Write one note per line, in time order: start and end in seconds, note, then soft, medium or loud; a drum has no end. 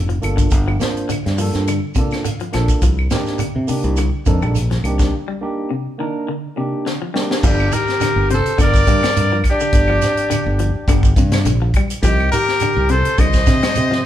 0.00 0.17 F1 medium
0.09 0.25 F3 medium
0.09 closed hi-hat soft
0.22 0.48 G1 medium
0.22 0.51 A#3 medium
0.22 0.51 D4 medium
0.22 0.51 F4 medium
0.22 0.51 A4 medium
0.22 closed hi-hat medium
0.22 claves medium
0.22 shekere soft
0.37 0.53 D3 medium
0.37 kick medium
0.37 closed hi-hat soft
0.37 shekere medium
0.51 0.76 G1 loud
0.51 kick medium
0.51 closed hi-hat medium
0.51 shekere medium
0.68 0.83 F3 medium
0.68 claves medium
0.80 1.09 A#3 medium
0.80 1.09 D4 medium
0.80 1.09 F4 medium
0.80 1.10 C5 medium
0.80 snare medium
0.80 closed hi-hat medium
0.80 shekere medium
0.97 closed hi-hat soft
0.97 shekere soft
1.09 1.25 D3 medium
1.09 closed hi-hat medium
1.09 claves medium
1.09 shekere medium
1.26 1.50 G2 medium
1.26 snare soft
1.26 closed hi-hat soft
1.38 1.54 F3 medium
1.38 1.67 A#3 medium
1.38 1.67 D4 medium
1.38 1.67 F4 medium
1.38 1.68 A4 loud
1.38 open hi-hat medium
1.38 shekere medium
1.53 1.79 G2 medium
1.53 snare soft
1.53 closed hi-hat soft
1.53 shekere soft
1.67 1.84 D3 medium
1.67 closed hi-hat medium
1.67 claves medium
1.67 shekere medium
1.95 2.12 C3 medium
1.95 2.25 A#3 medium
1.95 2.25 D4 medium
1.95 2.25 F4 medium
1.95 2.26 A4 medium
1.95 2.24 D5 medium
1.95 kick medium
1.95 closed hi-hat soft
1.95 shekere medium
2.11 snare soft
2.11 claves medium
2.11 shekere soft
2.25 2.33 D3 medium
2.25 2.80 F5 medium
2.25 closed hi-hat medium
2.25 shekere medium
2.40 2.48 F3 medium
2.40 closed hi-hat soft
2.52 2.67 A#1 medium
2.52 2.70 F3 medium
2.52 2.82 A#3 medium
2.52 2.82 D4 medium
2.52 2.82 F4 medium
2.52 2.83 A4 medium
2.52 snare soft
2.52 closed hi-hat soft
2.52 claves medium
2.52 shekere soft
2.68 kick medium
2.68 closed hi-hat soft
2.68 shekere medium
2.82 3.07 C2 medium
2.82 2.99 F3 medium
2.82 kick medium
2.82 closed hi-hat medium
2.82 shekere medium
2.99 claves medium
3.10 3.28 D#3 medium
3.10 3.40 A#3 medium
3.10 3.40 D4 medium
3.10 3.40 D#4 medium
3.10 3.40 G4 medium
3.10 snare medium
3.10 closed hi-hat soft
3.10 shekere medium
3.26 snare soft
3.26 shekere soft
3.38 3.55 D3 medium
3.38 muted fingered electric bass stroke soft
3.38 closed hi-hat medium
3.38 claves medium
3.38 shekere medium
3.56 3.67 C3 medium
3.67 3.85 C3 medium
3.67 3.97 A#3 medium
3.67 3.97 D4 medium
3.67 3.97 D#4 medium
3.67 3.98 G4 medium
3.67 muted fingered electric bass stroke soft
3.67 open hi-hat medium
3.67 shekere medium
3.83 4.09 C2 medium
3.83 closed hi-hat soft
3.83 shekere soft
3.97 4.14 D3 medium
3.97 closed hi-hat medium
3.97 claves medium
3.97 shekere medium
4.26 4.40 F2 medium
4.26 4.36 D3 medium
4.26 4.55 A#3 medium
4.26 4.55 D4 medium
4.26 4.55 D#4 medium
4.26 4.56 A4 medium
4.26 kick medium
4.26 closed hi-hat medium
4.26 shekere medium
4.42 4.78 A#1 medium
4.42 4.58 G3 medium
4.42 claves medium
4.42 shekere soft
4.55 closed hi-hat medium
4.55 shekere medium
4.71 4.87 F3 medium
4.71 snare soft
4.71 closed hi-hat soft
4.84 5.08 C2 medium
4.84 5.13 A#3 medium
4.84 5.13 D4 medium
4.84 5.13 D#4 medium
4.84 5.14 G4 medium
4.84 closed hi-hat soft
4.84 claves medium
4.84 shekere soft
4.99 5.15 D3 medium
4.99 kick medium
4.99 snare soft
4.99 closed hi-hat soft
4.99 shekere medium
5.28 5.44 G3 medium
5.41 5.70 A#3 medium
5.41 5.70 D4 medium
5.41 5.71 D#4 medium
5.41 5.71 G4 medium
5.71 5.86 C3 medium
5.98 6.16 D#3 medium
5.98 6.27 A#3 medium
5.98 6.28 D4 medium
5.98 6.28 D#4 medium
5.98 6.28 A#4 medium
6.28 6.44 D3 medium
6.56 6.73 C3 medium
6.56 6.85 A#3 medium
6.56 6.85 D4 medium
6.56 6.86 D#4 medium
6.56 6.86 G4 medium
6.86 6.95 D3 medium
6.86 snare soft
7.02 7.09 F3 medium
7.14 7.30 G3 medium
7.14 7.43 A#3 medium
7.14 7.43 D4 medium
7.14 7.44 D#4 medium
7.14 7.44 G4 medium
7.14 snare medium
7.31 snare medium
7.43 7.68 G1 loud
7.43 7.60 F3 medium
7.43 7.76 D4 medium
7.43 7.75 G4 medium
7.43 kick medium
7.43 crash medium
7.43 shekere medium
7.60 claves medium
7.72 7.89 D#3 medium
7.72 8.31 G4 medium
7.72 8.30 A#4 loud
7.72 closed hi-hat medium
7.72 shekere medium
7.88 snare soft
7.88 shekere soft
8.00 8.17 D3 medium
8.00 snare soft
8.00 closed hi-hat medium
8.00 claves medium
8.00 shekere medium
8.16 8.41 G1 medium
8.30 8.46 C3 medium
8.30 8.57 C5 medium
8.30 closed hi-hat medium
8.30 shekere soft
8.34 8.59 A4 medium
8.46 muted fingered electric bass stroke soft
8.46 closed hi-hat medium
8.58 8.83 G1 loud
8.58 8.74 D3 medium
8.58 9.42 D5 loud
8.58 kick medium
8.58 closed hi-hat medium
8.58 claves medium
8.58 shekere medium
8.63 9.43 A#4 medium
8.74 kick medium
8.74 shekere medium
8.87 9.01 G2 loud
8.87 8.96 D3 medium
8.87 kick medium
8.87 closed hi-hat medium
8.87 shekere medium
9.03 9.19 G3 medium
9.03 snare medium
9.03 closed hi-hat medium
9.03 claves medium
9.03 shekere soft
9.16 9.41 G2 medium
9.16 closed hi-hat medium
9.16 shekere medium
9.32 9.48 F3 medium
9.44 kick medium
9.44 closed hi-hat medium
9.44 claves medium
9.44 shekere soft
9.50 11.16 D4 medium
9.50 11.16 G4 loud
9.60 9.77 D3 medium
9.60 shekere medium
9.73 9.98 G1 loud
9.73 kick medium
9.73 closed hi-hat medium
9.73 shekere medium
9.88 10.05 F3 medium
9.88 claves medium
10.02 snare soft
10.02 closed hi-hat medium
10.02 shekere medium
10.17 closed hi-hat medium
10.17 shekere soft
10.30 10.46 D3 medium
10.30 closed hi-hat medium
10.30 claves medium
10.30 shekere loud
10.46 10.71 G1 loud
10.59 10.76 F3 medium
10.59 closed hi-hat medium
10.59 shekere soft
10.75 muted fingered electric bass stroke soft
10.88 11.13 G1 loud
10.88 11.05 D3 medium
10.88 kick medium
10.88 closed hi-hat medium
10.88 claves medium
10.88 shekere medium
11.03 kick medium
11.03 shekere medium
11.16 11.47 G2 medium
11.16 11.34 C3 medium
11.16 kick medium
11.16 closed hi-hat medium
11.16 shekere medium
11.32 snare medium
11.32 closed hi-hat medium
11.32 claves medium
11.32 shekere soft
11.45 11.70 A#1 medium
11.45 11.55 D3 medium
11.45 closed hi-hat medium
11.45 shekere medium
11.62 11.69 F3 medium
11.74 11.92 G3 medium
11.74 kick medium
11.74 closed hi-hat medium
11.74 claves medium
11.74 shekere soft
11.90 closed hi-hat medium
11.90 shekere medium
12.03 12.28 C2 loud
12.03 12.20 F3 medium
12.03 12.30 G4 loud
12.03 kick medium
12.03 closed hi-hat medium
12.03 shekere medium
12.07 12.32 D#4 medium
12.20 claves medium
12.32 12.49 D#3 medium
12.32 12.93 G4 medium
12.32 12.92 A#4 loud
12.32 closed hi-hat medium
12.32 shekere medium
12.47 snare soft
12.47 shekere soft
12.60 12.78 D3 medium
12.60 closed hi-hat medium
12.60 claves medium
12.60 shekere medium
12.77 13.01 C2 medium
12.89 13.06 C3 medium
12.89 13.22 A4 medium
12.89 13.21 C5 medium
12.89 closed hi-hat medium
12.89 shekere soft
13.05 muted fingered electric bass stroke soft
13.05 closed hi-hat medium
13.18 13.43 C2 loud
13.18 13.35 D3 medium
13.18 14.06 C5 medium
13.18 14.06 D#5 loud
13.18 kick medium
13.18 closed hi-hat medium
13.18 claves medium
13.18 shekere medium
13.33 kick medium
13.33 snare soft
13.33 shekere medium
13.46 13.61 C3 loud
13.46 13.56 D3 medium
13.46 kick medium
13.46 snare soft
13.46 closed hi-hat medium
13.46 shekere medium
13.63 13.79 G3 medium
13.63 snare medium
13.63 closed hi-hat medium
13.63 claves medium
13.63 shekere soft
13.75 14.02 C3 medium
13.75 closed hi-hat medium
13.75 shekere medium
13.91 14.06 F3 medium
13.91 snare soft